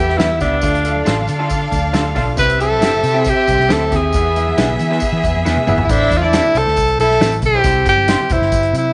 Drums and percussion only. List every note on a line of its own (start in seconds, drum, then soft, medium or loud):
0.09 snare soft
0.19 snare loud
0.19 closed hi-hat medium
0.19 tambourine medium
0.19 high conga medium
0.40 kick medium
0.40 snare soft
0.40 closed hi-hat medium
0.40 tambourine medium
0.40 low conga medium
0.61 kick loud
0.61 closed hi-hat medium
0.61 tambourine medium
0.61 muted conga soft
0.75 closed hi-hat medium
0.75 muted conga soft
0.84 closed hi-hat medium
0.84 tambourine medium
0.96 high conga medium
1.06 snare loud
1.06 closed hi-hat medium
1.06 tambourine medium
1.20 high conga soft
1.20 low conga medium
1.27 closed hi-hat medium
1.27 tambourine medium
1.27 low conga medium
1.50 kick medium
1.50 closed hi-hat medium
1.50 tambourine medium
1.50 muted conga soft
1.62 muted conga soft
1.72 kick medium
1.72 closed hi-hat medium
1.72 tambourine medium
1.72 high conga medium
1.94 snare loud
1.94 closed hi-hat medium
1.94 tambourine medium
1.94 muted conga soft
1.94 high conga medium
2.15 kick medium
2.15 snare soft
2.15 open hi-hat soft
2.15 tambourine soft
2.15 low conga medium
2.37 kick loud
2.37 closed hi-hat medium
2.37 tambourine loud
2.49 closed hi-hat medium
2.60 closed hi-hat medium
2.60 tambourine medium
2.71 high conga medium
2.82 snare loud
2.82 closed hi-hat medium
2.82 tambourine medium
2.94 high conga soft
2.94 low conga medium
3.03 closed hi-hat medium
3.03 tambourine medium
3.03 low conga medium
3.25 kick medium
3.25 closed hi-hat medium
3.25 tambourine medium
3.25 muted conga soft
3.47 kick medium
3.47 closed hi-hat medium
3.47 tambourine medium
3.47 high conga medium
3.60 snare soft
3.70 snare loud
3.70 closed hi-hat medium
3.70 tambourine medium
3.70 muted conga soft
3.70 high conga medium
3.81 muted conga soft
3.92 kick medium
3.92 snare soft
3.92 closed hi-hat medium
3.92 tambourine medium
3.92 low conga medium
4.13 kick loud
4.13 closed hi-hat medium
4.13 tambourine medium
4.36 closed hi-hat medium
4.36 tambourine medium
4.46 high conga medium
4.57 snare loud
4.57 closed hi-hat medium
4.57 tambourine medium
4.69 high conga soft
4.69 low conga medium
4.79 closed hi-hat medium
4.79 tambourine medium
4.79 low conga medium
4.92 snare soft
5.00 kick medium
5.00 closed hi-hat medium
5.00 tambourine medium
5.23 kick medium
5.23 closed hi-hat medium
5.23 tambourine medium
5.23 high conga medium
5.46 snare medium
5.46 tambourine medium
5.46 high conga medium
5.57 high tom medium
5.57 muted conga soft
5.67 mid tom medium
5.67 tambourine medium
5.67 low conga medium
5.78 floor tom medium
5.89 kick loud
5.89 closed hi-hat medium
5.89 tambourine loud
6.11 kick medium
6.11 closed hi-hat medium
6.11 tambourine medium
6.21 high conga medium
6.33 snare loud
6.33 closed hi-hat medium
6.33 tambourine medium
6.33 muted conga soft
6.44 high conga soft
6.44 low conga medium
6.55 closed hi-hat medium
6.55 tambourine medium
6.55 low conga medium
6.67 snare soft
6.76 kick medium
6.76 closed hi-hat medium
6.76 tambourine medium
6.76 muted conga soft
6.88 closed hi-hat medium
6.99 closed hi-hat medium
6.99 tambourine medium
6.99 high conga medium
7.11 snare soft
7.20 snare loud
7.20 closed hi-hat medium
7.20 tambourine loud
7.20 muted conga soft
7.20 high conga medium
7.32 closed hi-hat medium
7.42 kick medium
7.42 closed hi-hat medium
7.42 tambourine medium
7.42 low conga medium
7.64 kick loud
7.64 closed hi-hat medium
7.64 tambourine loud
7.64 muted conga soft
7.75 muted conga soft
7.86 kick medium
7.86 closed hi-hat medium
7.86 tambourine medium
7.96 high conga medium
8.08 snare loud
8.08 closed hi-hat medium
8.08 tambourine medium
8.20 high conga soft
8.20 low conga medium
8.29 kick loud
8.29 closed hi-hat medium
8.29 tambourine medium
8.29 low conga medium
8.42 snare soft
8.52 kick medium
8.52 closed hi-hat medium
8.52 tambourine medium
8.63 closed hi-hat medium
8.63 muted conga soft
8.74 closed hi-hat medium
8.74 tambourine medium
8.74 high conga medium